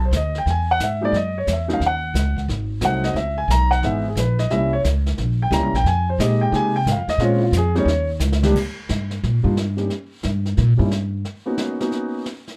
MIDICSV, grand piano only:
0, 0, Header, 1, 2, 480
1, 0, Start_track
1, 0, Tempo, 336889
1, 658, Time_signature, 4, 2, 24, 8
1, 17907, End_track
2, 0, Start_track
2, 0, Title_t, "Grand piano"
2, 0, Program_c, 0, 0
2, 74, Note_on_c, 0, 72, 72
2, 206, Note_off_c, 0, 72, 0
2, 237, Note_on_c, 0, 75, 85
2, 511, Note_off_c, 0, 75, 0
2, 541, Note_on_c, 0, 79, 86
2, 680, Note_off_c, 0, 79, 0
2, 715, Note_on_c, 0, 80, 97
2, 990, Note_off_c, 0, 80, 0
2, 1015, Note_on_c, 0, 78, 96
2, 1157, Note_off_c, 0, 78, 0
2, 1191, Note_on_c, 0, 76, 81
2, 1439, Note_on_c, 0, 54, 65
2, 1447, Note_on_c, 0, 56, 65
2, 1459, Note_on_c, 0, 58, 61
2, 1459, Note_on_c, 0, 63, 71
2, 1468, Note_off_c, 0, 76, 0
2, 1494, Note_on_c, 0, 74, 94
2, 1597, Note_off_c, 0, 54, 0
2, 1601, Note_off_c, 0, 56, 0
2, 1606, Note_off_c, 0, 63, 0
2, 1607, Note_off_c, 0, 58, 0
2, 1637, Note_off_c, 0, 74, 0
2, 1659, Note_on_c, 0, 75, 89
2, 1942, Note_off_c, 0, 75, 0
2, 1965, Note_on_c, 0, 73, 83
2, 2112, Note_off_c, 0, 73, 0
2, 2180, Note_on_c, 0, 76, 71
2, 2392, Note_on_c, 0, 54, 64
2, 2398, Note_on_c, 0, 57, 53
2, 2399, Note_on_c, 0, 61, 59
2, 2407, Note_on_c, 0, 63, 78
2, 2444, Note_off_c, 0, 76, 0
2, 2471, Note_on_c, 0, 77, 93
2, 2554, Note_off_c, 0, 54, 0
2, 2556, Note_off_c, 0, 57, 0
2, 2557, Note_off_c, 0, 61, 0
2, 2561, Note_off_c, 0, 63, 0
2, 2606, Note_off_c, 0, 77, 0
2, 2656, Note_on_c, 0, 78, 92
2, 3357, Note_off_c, 0, 78, 0
2, 4011, Note_on_c, 0, 54, 66
2, 4022, Note_on_c, 0, 57, 57
2, 4022, Note_on_c, 0, 60, 63
2, 4027, Note_on_c, 0, 63, 70
2, 4058, Note_on_c, 0, 78, 86
2, 4335, Note_on_c, 0, 75, 88
2, 4342, Note_off_c, 0, 78, 0
2, 4496, Note_off_c, 0, 54, 0
2, 4497, Note_off_c, 0, 75, 0
2, 4501, Note_off_c, 0, 57, 0
2, 4501, Note_off_c, 0, 60, 0
2, 4503, Note_off_c, 0, 63, 0
2, 4509, Note_on_c, 0, 76, 87
2, 4807, Note_off_c, 0, 76, 0
2, 4812, Note_on_c, 0, 80, 96
2, 4975, Note_off_c, 0, 80, 0
2, 5001, Note_on_c, 0, 82, 113
2, 5283, Note_on_c, 0, 78, 98
2, 5293, Note_off_c, 0, 82, 0
2, 5446, Note_on_c, 0, 52, 59
2, 5448, Note_on_c, 0, 56, 57
2, 5450, Note_off_c, 0, 78, 0
2, 5461, Note_on_c, 0, 59, 61
2, 5463, Note_on_c, 0, 63, 66
2, 5483, Note_on_c, 0, 76, 87
2, 5734, Note_off_c, 0, 52, 0
2, 5735, Note_off_c, 0, 56, 0
2, 5741, Note_off_c, 0, 59, 0
2, 5742, Note_off_c, 0, 63, 0
2, 5774, Note_off_c, 0, 76, 0
2, 5813, Note_on_c, 0, 68, 63
2, 5956, Note_off_c, 0, 68, 0
2, 5968, Note_on_c, 0, 71, 80
2, 6257, Note_off_c, 0, 71, 0
2, 6259, Note_on_c, 0, 75, 86
2, 6419, Note_off_c, 0, 75, 0
2, 6422, Note_on_c, 0, 55, 56
2, 6427, Note_on_c, 0, 76, 96
2, 6438, Note_on_c, 0, 58, 52
2, 6438, Note_on_c, 0, 61, 53
2, 6444, Note_on_c, 0, 64, 73
2, 6701, Note_off_c, 0, 55, 0
2, 6709, Note_off_c, 0, 58, 0
2, 6710, Note_off_c, 0, 61, 0
2, 6712, Note_off_c, 0, 64, 0
2, 6726, Note_off_c, 0, 76, 0
2, 6741, Note_on_c, 0, 73, 94
2, 6839, Note_off_c, 0, 73, 0
2, 7728, Note_on_c, 0, 79, 85
2, 7852, Note_on_c, 0, 55, 60
2, 7858, Note_on_c, 0, 61, 57
2, 7863, Note_on_c, 0, 58, 55
2, 7864, Note_on_c, 0, 64, 59
2, 7874, Note_off_c, 0, 79, 0
2, 7884, Note_on_c, 0, 82, 96
2, 8136, Note_off_c, 0, 55, 0
2, 8139, Note_off_c, 0, 61, 0
2, 8142, Note_off_c, 0, 58, 0
2, 8143, Note_off_c, 0, 64, 0
2, 8175, Note_off_c, 0, 82, 0
2, 8201, Note_on_c, 0, 79, 93
2, 8350, Note_off_c, 0, 79, 0
2, 8366, Note_on_c, 0, 80, 103
2, 8656, Note_off_c, 0, 80, 0
2, 8684, Note_on_c, 0, 72, 74
2, 8820, Note_on_c, 0, 56, 54
2, 8826, Note_on_c, 0, 58, 46
2, 8831, Note_on_c, 0, 63, 48
2, 8831, Note_on_c, 0, 67, 60
2, 8832, Note_off_c, 0, 72, 0
2, 8832, Note_on_c, 0, 75, 91
2, 9129, Note_off_c, 0, 75, 0
2, 9137, Note_on_c, 0, 79, 87
2, 9264, Note_off_c, 0, 56, 0
2, 9273, Note_off_c, 0, 58, 0
2, 9274, Note_off_c, 0, 63, 0
2, 9284, Note_off_c, 0, 67, 0
2, 9285, Note_on_c, 0, 56, 64
2, 9294, Note_on_c, 0, 58, 58
2, 9295, Note_on_c, 0, 63, 61
2, 9298, Note_off_c, 0, 79, 0
2, 9305, Note_on_c, 0, 67, 67
2, 9338, Note_on_c, 0, 80, 112
2, 9573, Note_off_c, 0, 56, 0
2, 9578, Note_off_c, 0, 58, 0
2, 9578, Note_off_c, 0, 63, 0
2, 9583, Note_off_c, 0, 67, 0
2, 9622, Note_off_c, 0, 80, 0
2, 9630, Note_on_c, 0, 79, 94
2, 9784, Note_off_c, 0, 79, 0
2, 9858, Note_on_c, 0, 77, 81
2, 10109, Note_on_c, 0, 75, 107
2, 10123, Note_off_c, 0, 77, 0
2, 10256, Note_on_c, 0, 56, 70
2, 10264, Note_off_c, 0, 75, 0
2, 10266, Note_on_c, 0, 65, 82
2, 10267, Note_on_c, 0, 60, 66
2, 10270, Note_on_c, 0, 61, 66
2, 10287, Note_on_c, 0, 73, 78
2, 10532, Note_on_c, 0, 64, 53
2, 10539, Note_off_c, 0, 56, 0
2, 10544, Note_off_c, 0, 60, 0
2, 10544, Note_off_c, 0, 65, 0
2, 10545, Note_off_c, 0, 61, 0
2, 10556, Note_off_c, 0, 64, 0
2, 10576, Note_off_c, 0, 73, 0
2, 10594, Note_on_c, 0, 65, 69
2, 10747, Note_off_c, 0, 65, 0
2, 10787, Note_on_c, 0, 68, 90
2, 11044, Note_on_c, 0, 55, 72
2, 11047, Note_on_c, 0, 61, 68
2, 11049, Note_on_c, 0, 58, 74
2, 11057, Note_on_c, 0, 63, 78
2, 11067, Note_off_c, 0, 68, 0
2, 11086, Note_on_c, 0, 73, 96
2, 11199, Note_off_c, 0, 55, 0
2, 11201, Note_off_c, 0, 61, 0
2, 11202, Note_off_c, 0, 58, 0
2, 11206, Note_off_c, 0, 63, 0
2, 11517, Note_off_c, 0, 73, 0
2, 12012, Note_on_c, 0, 39, 73
2, 12019, Note_on_c, 0, 58, 65
2, 12021, Note_on_c, 0, 55, 66
2, 12027, Note_on_c, 0, 62, 65
2, 12028, Note_on_c, 0, 67, 80
2, 12163, Note_off_c, 0, 39, 0
2, 12167, Note_off_c, 0, 58, 0
2, 12168, Note_off_c, 0, 55, 0
2, 12171, Note_off_c, 0, 62, 0
2, 12171, Note_off_c, 0, 67, 0
2, 13435, Note_on_c, 0, 55, 51
2, 13437, Note_on_c, 0, 58, 41
2, 13442, Note_on_c, 0, 62, 47
2, 13444, Note_on_c, 0, 63, 47
2, 13451, Note_on_c, 0, 65, 54
2, 13595, Note_off_c, 0, 55, 0
2, 13596, Note_off_c, 0, 58, 0
2, 13599, Note_off_c, 0, 62, 0
2, 13600, Note_off_c, 0, 63, 0
2, 13603, Note_off_c, 0, 65, 0
2, 13914, Note_on_c, 0, 55, 44
2, 13914, Note_on_c, 0, 58, 43
2, 13926, Note_on_c, 0, 61, 38
2, 13932, Note_on_c, 0, 63, 42
2, 13935, Note_on_c, 0, 67, 50
2, 14075, Note_off_c, 0, 55, 0
2, 14075, Note_off_c, 0, 58, 0
2, 14081, Note_off_c, 0, 61, 0
2, 14084, Note_off_c, 0, 63, 0
2, 14085, Note_off_c, 0, 67, 0
2, 15350, Note_on_c, 0, 55, 58
2, 15362, Note_on_c, 0, 58, 57
2, 15365, Note_on_c, 0, 61, 53
2, 15370, Note_on_c, 0, 63, 49
2, 15374, Note_on_c, 0, 64, 65
2, 15513, Note_off_c, 0, 55, 0
2, 15519, Note_off_c, 0, 58, 0
2, 15521, Note_off_c, 0, 61, 0
2, 15523, Note_off_c, 0, 63, 0
2, 15525, Note_off_c, 0, 64, 0
2, 16324, Note_on_c, 0, 58, 60
2, 16330, Note_on_c, 0, 59, 60
2, 16332, Note_on_c, 0, 61, 52
2, 16337, Note_on_c, 0, 66, 71
2, 16340, Note_on_c, 0, 63, 56
2, 16778, Note_off_c, 0, 58, 0
2, 16781, Note_off_c, 0, 59, 0
2, 16782, Note_off_c, 0, 61, 0
2, 16785, Note_off_c, 0, 66, 0
2, 16786, Note_off_c, 0, 63, 0
2, 16814, Note_on_c, 0, 58, 60
2, 16816, Note_on_c, 0, 59, 49
2, 16824, Note_on_c, 0, 61, 52
2, 16827, Note_on_c, 0, 63, 59
2, 16829, Note_on_c, 0, 66, 67
2, 17429, Note_off_c, 0, 58, 0
2, 17430, Note_off_c, 0, 59, 0
2, 17434, Note_off_c, 0, 61, 0
2, 17436, Note_off_c, 0, 63, 0
2, 17437, Note_off_c, 0, 66, 0
2, 17907, End_track
0, 0, End_of_file